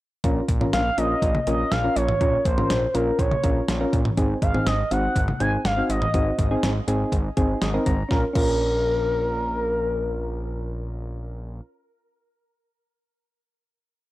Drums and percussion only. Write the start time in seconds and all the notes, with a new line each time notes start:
0.24 kick, closed hi-hat
0.49 kick, closed hi-hat
0.61 mid tom
0.73 snare, closed hi-hat
0.98 closed hi-hat
1.22 kick, closed hi-hat
1.35 mid tom
1.47 closed hi-hat
1.72 snare, closed hi-hat
1.96 closed hi-hat
2.09 mid tom
2.21 kick, closed hi-hat
2.45 kick, closed hi-hat
2.58 mid tom
2.70 snare, closed hi-hat
2.95 closed hi-hat
3.19 kick, closed hi-hat
3.31 mid tom
3.44 kick, closed hi-hat
3.68 snare, closed hi-hat
3.93 kick, closed hi-hat
4.05 mid tom
4.17 kick, closed hi-hat
4.42 kick, closed hi-hat
4.54 mid tom
4.67 snare, closed hi-hat
4.91 closed hi-hat
5.16 kick, closed hi-hat
5.28 mid tom
5.40 closed hi-hat
5.65 snare, closed hi-hat
5.90 closed hi-hat
6.02 mid tom
6.14 kick, closed hi-hat
6.39 kick, closed hi-hat
6.63 snare, closed hi-hat
6.88 closed hi-hat
7.12 kick, closed hi-hat
7.37 kick, closed hi-hat
7.62 snare, closed hi-hat
7.86 kick, closed hi-hat
8.11 kick, snare
8.35 kick, crash